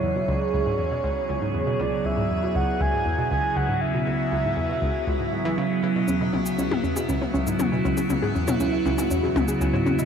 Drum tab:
SH |----------------|----------------|----------------|x--xx--xx--xx--x|
T1 |----------------|----------------|----------------|--o--o---o--o---|

SH |x--xx--xx--xx--x|
T1 |o--o---o--o---o-|